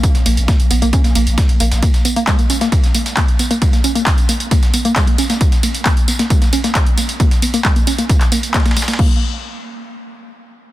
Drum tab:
CC |--------------------------------|--------------------------------|--------------------------------|--------------------------------|
RD |x---x---x---x---x---x---x-x-x---|x---x---x---x---x---x---x---x---|x---x---x---x---x---x---x-x-x---|x---x---x---x---x---x---x---x---|
HH |x-x-o-x-o-x-o-x-x-x-o-x-x-x-o-x-|x-x-o-x-x-x-o-x-x-x-o-x-x-x-o-x-|x-x-o-x-x-x-o-x-x-x-o-x-x-x-o-x-|x-x-o-x-x-x-o-x-x-x-o-x-x-x-o-x-|
TB |x-x-x-x-x-x-x-x-x-x-x-x-x---x-x-|x-x-x-x-x-x-x-x-x-x-x-x-x---x-x-|x-x-x-x-x-x-x-x-x-x-x-x-x---x-x-|x-x-x-x-x-x-x-x-x-x-x-x-x---x-x-|
CP |--------------------------------|--------x---------------x-------|--------x---------------x-------|--------x---------------x-------|
SD |--o-----o---------o-----o-----o-|--o-----o-----o---o---o-o-------|--o-----o---------o-----o-----o-|--o-----o-----o---o---o-o-------|
BD |o-------o-------o-------o-------|o-------o-------o-------o-------|o-------o-------o-------o-------|o-------o-------o-------o-------|

CC |--------------------------------|x-------------------------------|
RD |x---x---x---x---x---x---xxxxxxxx|--------------------------------|
HH |x-x-o-x-o-x-o-x-x-x-o-x-x-x-o-x-|--------------------------------|
TB |x-x-x-x-x-x-x-x-x-x-x-x-x-x-x-x-|--------------------------------|
CP |--------x---------x-----x-------|--------------------------------|
SD |--o-----o---------o-----oooooooo|--------------------------------|
BD |o-------o-------o-------o-------|o-------------------------------|